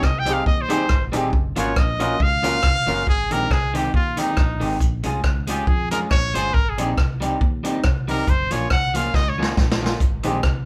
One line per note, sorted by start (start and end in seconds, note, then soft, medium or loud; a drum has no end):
0.03 0.40 C2 medium
0.03 0.20 D#5 medium
0.03 kick loud
0.03 cross-stick loud
0.19 0.34 G5 loud
0.26 0.41 G3 medium
0.26 0.42 C4 loud
0.26 0.39 C4 medium
0.26 0.39 D#4 medium
0.26 0.42 D#4 loud
0.26 0.40 G4 medium
0.26 0.42 G4 loud
0.26 0.40 G#4 loud
0.26 closed hi-hat medium
0.33 0.46 F5 medium
0.46 0.83 D#2 medium
0.46 0.51 G4 soft
0.46 0.51 G#4 soft
0.46 0.63 D#5 loud
0.46 kick loud
0.61 1.05 C5 medium
0.69 0.85 G3 medium
0.69 0.82 C4 loud
0.69 0.85 C4 medium
0.69 0.83 D#4 medium
0.69 0.85 D#4 medium
0.69 0.83 G4 medium
0.69 0.86 G4 loud
0.69 0.83 G#4 loud
0.69 closed hi-hat medium
0.89 1.10 G#1 loud
0.89 kick loud
0.89 cross-stick loud
1.12 1.31 D#1 loud
1.12 1.28 G3 medium
1.12 1.26 C4 medium
1.12 1.28 C4 medium
1.12 1.26 D#4 medium
1.12 1.29 D#4 medium
1.12 1.26 G4 medium
1.12 1.29 G4 medium
1.12 1.27 G#4 loud
1.12 closed hi-hat medium
1.33 1.54 F#1 loud
1.33 kick loud
1.56 1.74 G#1 medium
1.56 1.72 F3 medium
1.56 1.72 A#3 medium
1.56 1.69 C#4 medium
1.56 1.72 C#4 medium
1.56 1.70 F4 medium
1.56 1.73 F4 medium
1.56 1.70 F#4 medium
1.56 1.70 A#4 loud
1.56 1.80 C#5 medium
1.56 closed hi-hat medium
1.76 2.14 A#1 medium
1.76 2.24 D#5 loud
1.76 kick loud
1.76 cross-stick loud
2.00 2.15 F3 medium
2.00 2.15 A#3 medium
2.00 2.13 C#4 medium
2.00 2.16 C#4 medium
2.00 2.13 F4 medium
2.00 2.16 F4 loud
2.00 2.13 F#4 medium
2.00 2.13 A#4 loud
2.00 closed hi-hat medium
2.20 2.57 C#2 medium
2.20 3.08 F5 loud
2.20 kick loud
2.43 2.58 F3 medium
2.43 2.59 A#3 medium
2.43 2.56 C#4 loud
2.43 2.59 C#4 medium
2.43 2.57 F4 medium
2.43 2.59 F4 loud
2.43 2.57 F#4 medium
2.43 2.57 A#4 loud
2.43 closed hi-hat medium
2.63 2.84 C2 medium
2.63 kick loud
2.63 cross-stick loud
2.87 3.04 F#1 loud
2.87 3.02 F3 medium
2.87 3.02 A#3 medium
2.87 3.00 C#4 medium
2.87 3.03 C#4 medium
2.87 3.00 F4 medium
2.87 3.03 F4 loud
2.87 3.01 F#4 medium
2.87 3.01 A#4 loud
2.87 open hi-hat medium
3.07 3.27 G#1 medium
3.07 3.34 G#4 loud
3.07 kick loud
3.31 3.48 A#1 medium
3.31 3.46 D#3 medium
3.31 3.46 G#3 medium
3.31 3.47 C4 medium
3.31 3.47 G4 medium
3.31 3.53 A#4 loud
3.31 closed hi-hat medium
3.51 3.87 C2 loud
3.51 3.76 G#4 loud
3.51 kick loud
3.51 cross-stick loud
3.74 3.89 D#3 loud
3.74 3.89 G#3 medium
3.74 3.90 C4 loud
3.74 3.94 G4 medium
3.74 3.90 G4 medium
3.74 closed hi-hat medium
3.94 4.31 D#2 loud
3.94 4.20 F4 medium
3.94 kick loud
4.17 4.32 D#3 medium
4.17 4.33 G#3 medium
4.17 4.33 C4 loud
4.17 4.81 D#4 medium
4.17 4.33 G4 loud
4.17 closed hi-hat loud
4.37 4.58 A#1 medium
4.37 kick loud
4.37 cross-stick loud
4.60 4.78 G#1 loud
4.60 4.76 D#3 medium
4.60 4.76 G#3 medium
4.60 4.76 C4 medium
4.60 4.77 G4 medium
4.60 open hi-hat medium
4.80 5.01 A#1 loud
4.80 kick loud
4.80 hi-hat pedal medium
5.03 5.22 C2 medium
5.03 5.19 G#3 medium
5.03 5.19 C#4 medium
5.03 5.20 F4 loud
5.03 5.20 G#4 loud
5.03 closed hi-hat medium
5.24 5.61 C#2 medium
5.24 kick loud
5.24 cross-stick loud
5.47 5.63 G#3 medium
5.47 5.63 C#4 medium
5.47 5.64 F4 medium
5.47 5.69 G4 medium
5.47 5.64 G#4 medium
5.47 closed hi-hat medium
5.67 6.04 F2 loud
5.67 5.90 G#4 loud
5.67 kick loud
5.91 6.06 G#3 medium
5.91 6.07 C#4 loud
5.91 6.07 F4 loud
5.91 6.07 G#4 loud
5.91 6.00 A#4 medium
5.91 closed hi-hat loud
6.11 6.31 A#1 medium
6.11 6.36 C#5 loud
6.11 kick loud
6.11 cross-stick loud
6.34 6.51 G1 medium
6.34 6.49 G#3 medium
6.34 6.50 C#4 medium
6.34 6.50 F4 medium
6.34 6.50 G#4 medium
6.34 6.55 C5 loud
6.34 closed hi-hat medium
6.54 6.75 G#1 loud
6.54 6.71 A#4 loud
6.54 kick loud
6.69 6.91 G#4 medium
6.78 6.95 A#1 medium
6.78 6.93 G3 medium
6.78 6.93 C4 medium
6.78 6.94 D#4 medium
6.78 6.94 G4 medium
6.78 closed hi-hat medium
6.97 7.35 C2 loud
6.97 kick loud
6.97 cross-stick loud
7.20 7.36 G3 medium
7.20 7.36 C4 medium
7.20 7.37 D#4 medium
7.20 7.37 G4 loud
7.20 closed hi-hat medium
7.41 7.78 D#2 loud
7.41 kick loud
7.64 7.79 G3 medium
7.64 7.80 C4 loud
7.64 7.80 D#4 loud
7.64 7.80 G4 medium
7.64 closed hi-hat medium
7.84 8.21 C2 loud
7.84 kick loud
7.84 cross-stick loud
8.08 8.23 G3 medium
8.08 8.23 C4 medium
8.08 8.24 D#4 medium
8.08 8.24 G4 medium
8.08 8.31 A#4 loud
8.08 open hi-hat medium
8.27 8.48 F#1 loud
8.27 8.53 C5 medium
8.27 kick loud
8.27 hi-hat pedal medium
8.51 8.69 A#1 medium
8.51 8.66 F3 medium
8.51 8.66 A#3 medium
8.51 8.67 C#4 medium
8.51 8.67 F4 loud
8.51 8.71 C#5 medium
8.51 closed hi-hat medium
8.70 9.08 C2 loud
8.70 8.96 F#5 loud
8.70 kick loud
8.70 cross-stick loud
8.94 9.09 F3 medium
8.94 9.10 A#3 loud
8.94 9.10 C#4 medium
8.94 9.10 F4 medium
8.94 9.17 F5 medium
8.94 closed hi-hat medium
9.14 9.51 C#2 loud
9.14 9.30 D#5 loud
9.14 kick loud
9.14 snare medium
9.29 9.51 C#5 medium
9.38 9.53 F3 medium
9.38 9.53 A#3 loud
9.38 9.54 C#4 loud
9.38 9.54 F4 loud
9.43 snare medium
9.57 9.94 A#1 medium
9.57 kick loud
9.57 snare medium
9.72 snare loud
9.81 9.96 F3 medium
9.81 9.97 A#3 medium
9.81 9.97 C#4 medium
9.81 9.97 F4 medium
9.86 snare medium
10.00 10.21 G#1 loud
10.00 kick loud
10.00 hi-hat pedal medium
10.23 10.41 A#1 medium
10.23 10.39 D#3 medium
10.23 10.39 G#3 medium
10.23 10.40 C4 medium
10.23 10.37 D#4 medium
10.23 10.37 G4 medium
10.23 10.40 G4 medium
10.23 10.37 G#4 medium
10.23 10.37 C5 medium
10.23 closed hi-hat medium
10.43 10.65 C2 loud
10.43 kick loud
10.43 cross-stick loud